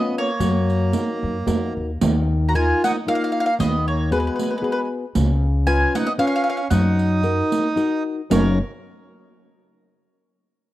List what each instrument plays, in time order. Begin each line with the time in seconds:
Already playing: accordion B3, nylon-string guitar B3 C#4 F4, mandolin D#5
0.18 accordion A#3, mandolin C#5
0.40 upright bass F#2, nylon-string guitar F#3, riq
0.70 riq
0.93 nylon-string guitar D#4 F#4 A#4, riq
1.23 upright bass F#2
1.46 upright bass F2, nylon-string guitar D#4 F#4 A#4, riq
1.77 upright bass D#2
2.01 upright bass D#2, nylon-string guitar D#3, riq
2.49 accordion F#4, mandolin A#5
2.54 nylon-string guitar D#4 F4 A#4, accordion F4, mandolin G#5, riq
2.84 accordion D#4, mandolin F#5, riq
3.07 accordion A#3, nylon-string guitar D#4 F4 A#4, mandolin F5
3.15 mandolin F5
3.24 mandolin F5
3.32 mandolin F5
3.40 mandolin F5
3.46 mandolin F5
3.59 upright bass D#2, nylon-string guitar D#3, accordion B3, mandolin D#5, riq
3.88 accordion A#3, mandolin C#5
4.11 accordion G#3, nylon-string guitar B3 F#4 G#4, mandolin B4, riq
4.20 mandolin B4
4.27 mandolin B4
4.36 mandolin B4, riq
4.43 mandolin B4
4.50 mandolin B4
4.58 nylon-string guitar B3, mandolin B4
4.62 nylon-string guitar F#4 G#4, mandolin B4
4.72 mandolin B4
5.15 upright bass C#2, nylon-string guitar C#3, riq
5.66 nylon-string guitar C#4 F4 B4, accordion F4, mandolin G#5, riq
5.95 accordion D#4, mandolin F#5, riq
6.07 accordion B3, mandolin D#5
6.18 nylon-string guitar C#4 F4 B4, accordion C#4, mandolin F5
6.27 mandolin F5
6.36 mandolin F5
6.44 mandolin F5
6.50 mandolin F5
6.57 mandolin F5
6.70 upright bass F#2, nylon-string guitar F#3, accordion D#4, mandolin F#5, riq
6.99 riq
7.23 nylon-string guitar D#4 F#4 A#4, riq
7.52 riq
7.76 nylon-string guitar D#4 F#4 A#4, riq
8.30 upright bass F#1, nylon-string guitar F#2 C#3 F#3 C#4 D#4 A#4, accordion A#4, mandolin C#5, riq